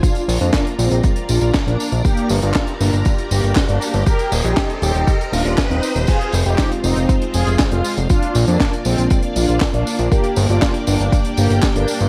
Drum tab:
CC |----------------|----------------|----------------|x---------------|
HH |xxoxxxoxxxoxxxox|xxoxxxoxxxoxxxox|xxoxxxoxxxoxxxox|xxoxxxoxxxoxxxox|
TB |xxxxx-xxx-xxx-xx|x-xxx-xxx-x-x-xx|xxxxx-xxx-xxx-xx|x-xxx-xxx-xxx-xx|
CP |----x-------x---|----x-------x---|----x-------x---|----x-------x---|
SD |----o-------o---|----o-------o---|----o-------o---|----o-------o---|
BD |o---o---o---o---|o---o---o---o---|o---o---o---o---|o---o---o---o---|

CC |----------------|----------------|
HH |xxoxxxoxxxoxxxox|xxoxxxoxxxoxxxox|
TB |x-xxx-xxx-xxx-xx|x-xxx-x-x-xxx-xx|
CP |----x-------x---|----x-------x---|
SD |----o-------o---|----o-------o---|
BD |o---o---o---o---|o---o---o---o---|